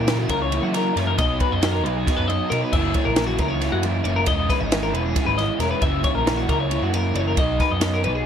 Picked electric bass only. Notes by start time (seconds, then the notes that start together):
Already playing: A#2
0.29 C#2
0.63 F#3
0.96 F#2
1.18 B1
1.52 F#2
1.86 B1
2.19 F#2
2.52 B2
2.73 F#1
3.07 A#1
3.39 C#2
3.73 F#2
4.05 F#1
4.27 E1
4.61 G#1
4.93 E1
5.27 G#1
5.60 E1
5.82 F#1
6.14 A#1
6.49 C#2
6.82 F#2
7.15 F#1
7.37 B1
7.71 F#2
8.04 B1